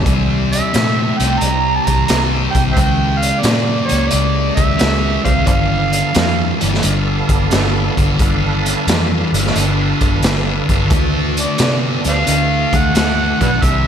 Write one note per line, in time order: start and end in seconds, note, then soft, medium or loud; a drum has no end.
0.03 0.60 C2 medium
0.03 0.70 C3 medium
0.03 0.70 G3 medium
0.03 2.73 C4 medium
0.03 2.73 D4 medium
0.03 2.73 E4 medium
0.03 2.73 G4 medium
0.03 kick loud
0.03 closed hi-hat medium
0.52 1.19 E5 medium
0.52 closed hi-hat medium
0.73 1.11 A#2 medium
0.73 1.15 C3 medium
0.73 1.15 A3 medium
0.73 snare medium
0.73 closed hi-hat medium
1.18 1.37 C2 medium
1.18 1.39 C3 medium
1.18 1.39 A3 medium
1.18 1.40 G5 medium
1.18 closed hi-hat medium
1.39 1.78 C2 medium
1.39 2.04 C3 medium
1.39 2.04 G3 medium
1.39 1.75 A#5 loud
1.39 closed hi-hat medium
1.76 1.87 A5 medium
1.86 2.04 C2 medium
1.86 2.06 A#5 medium
1.86 kick medium
1.86 closed hi-hat medium
2.07 2.46 C2 medium
2.07 2.51 C3 medium
2.07 2.51 G3 medium
2.07 2.23 A#5 medium
2.07 snare loud
2.07 closed hi-hat medium
2.51 2.72 C2 medium
2.51 2.62 G5 medium
2.51 kick medium
2.51 closed hi-hat medium
2.55 2.75 C3 medium
2.55 2.75 G3 medium
2.73 3.40 C#3 medium
2.73 3.40 G#3 medium
2.73 2.80 C5 medium
2.73 2.79 E5 medium
2.73 3.21 G5 medium
2.77 3.31 C#2 medium
2.77 5.45 E3 medium
2.77 5.45 A#3 medium
2.77 5.46 G4 medium
2.77 kick loud
2.77 closed hi-hat medium
3.19 3.42 F5 medium
3.19 closed hi-hat medium
3.41 3.81 A#2 medium
3.41 3.85 C#3 medium
3.41 3.85 A#3 medium
3.41 3.89 D5 medium
3.41 closed hi-hat medium
3.45 snare loud
3.87 4.08 C#3 medium
3.87 4.09 A#3 medium
3.87 4.10 C#5 medium
3.87 closed hi-hat medium
3.91 4.08 C#2 medium
4.09 4.74 C#3 medium
4.09 4.75 G#3 medium
4.09 4.55 D5 medium
4.09 closed hi-hat medium
4.13 4.49 C#2 medium
4.56 4.75 C#2 medium
4.56 5.21 E5 medium
4.56 kick medium
4.56 closed hi-hat medium
4.78 5.17 C#2 medium
4.78 5.20 C#3 medium
4.78 5.21 G#3 medium
4.78 snare loud
4.78 closed hi-hat medium
5.24 5.43 C#2 medium
5.24 5.45 C#3 medium
5.24 5.45 G#3 medium
5.24 5.33 C5 medium
5.24 5.32 D5 medium
5.24 5.45 F5 medium
5.24 kick medium
5.24 closed hi-hat medium
5.46 6.01 G1 medium
5.46 6.10 G2 medium
5.46 6.11 D3 medium
5.46 8.16 B3 medium
5.46 8.16 D4 medium
5.46 8.16 A4 medium
5.46 5.53 C5 medium
5.46 5.53 D5 medium
5.46 6.57 F5 medium
5.46 8.16 F5 medium
5.46 kick loud
5.46 closed hi-hat medium
5.93 closed hi-hat medium
6.13 6.52 F2 medium
6.13 6.56 G2 medium
6.13 6.56 E3 medium
6.13 snare loud
6.13 closed hi-hat medium
6.60 6.79 G1 medium
6.60 6.80 G2 medium
6.60 6.81 E3 medium
6.60 closed hi-hat medium
6.74 snare soft
6.83 7.21 G1 medium
6.83 7.47 G2 medium
6.83 7.47 D3 medium
6.83 closed hi-hat medium
7.29 7.47 G1 medium
7.29 kick medium
7.29 closed hi-hat medium
7.51 7.89 G1 medium
7.51 7.92 G2 medium
7.51 7.93 D3 medium
7.51 snare loud
7.51 closed hi-hat medium
7.97 8.15 G1 loud
7.97 8.17 G2 medium
7.97 8.17 D3 medium
7.97 kick medium
7.97 closed hi-hat medium
8.19 8.73 G1 medium
8.19 8.83 G2 medium
8.19 8.83 D3 medium
8.19 10.89 D4 medium
8.19 10.88 A4 medium
8.19 10.89 B4 medium
8.19 10.89 F5 medium
8.19 kick loud
8.19 closed hi-hat medium
8.66 closed hi-hat medium
8.87 9.24 F2 medium
8.87 9.28 G2 medium
8.87 9.29 E3 medium
8.87 snare loud
8.87 closed hi-hat medium
9.32 9.50 G1 medium
9.32 9.53 G2 medium
9.32 9.54 E3 medium
9.32 closed hi-hat medium
9.46 snare soft
9.56 9.92 G1 medium
9.56 10.19 G2 medium
9.56 10.19 D3 medium
9.56 closed hi-hat medium
10.01 10.19 G1 medium
10.01 kick medium
10.01 closed hi-hat medium
10.23 10.60 G1 medium
10.23 10.65 G2 medium
10.23 10.66 D3 medium
10.23 snare loud
10.23 closed hi-hat medium
10.69 10.87 G1 medium
10.69 10.89 G2 medium
10.69 10.90 D3 medium
10.69 kick medium
10.69 closed hi-hat medium
10.89 11.45 D2 medium
10.89 11.55 D3 medium
10.89 13.60 E3 medium
10.89 11.55 A3 medium
10.89 13.60 D4 medium
10.89 13.60 F#4 medium
10.89 13.60 A4 medium
10.89 kick loud
10.89 closed hi-hat medium
11.37 11.59 D5 medium
11.37 closed hi-hat medium
11.58 11.96 C3 medium
11.58 12.00 D3 medium
11.58 12.01 B3 medium
11.58 11.77 D5 medium
11.58 snare loud
11.58 closed hi-hat medium
12.04 12.22 D2 medium
12.04 12.25 D3 medium
12.04 12.25 B3 medium
12.04 closed hi-hat medium
12.09 12.16 C5 medium
12.09 12.17 D5 medium
12.09 12.77 F5 loud
12.27 12.64 D2 medium
12.27 12.91 D3 medium
12.27 12.91 A3 medium
12.27 closed hi-hat medium
12.73 12.90 D2 medium
12.73 12.96 F#5 medium
12.73 kick medium
12.73 closed hi-hat medium
12.95 13.33 D2 medium
12.95 13.36 D3 medium
12.95 13.37 A3 medium
12.95 13.39 F#5 medium
12.95 snare loud
12.95 closed hi-hat medium
13.41 13.58 B1 medium
13.41 13.61 D3 medium
13.41 13.61 A3 medium
13.41 13.50 B4 medium
13.41 13.51 D5 medium
13.41 13.65 F#5 loud
13.41 kick medium
13.41 closed hi-hat medium
13.62 13.87 C2 medium
13.62 13.87 C3 medium
13.62 13.87 G3 medium
13.62 13.87 D4 medium
13.62 13.87 E4 medium
13.62 13.87 G4 medium
13.62 13.87 E5 loud
13.62 13.87 A#5 medium
13.62 kick loud
13.62 closed hi-hat medium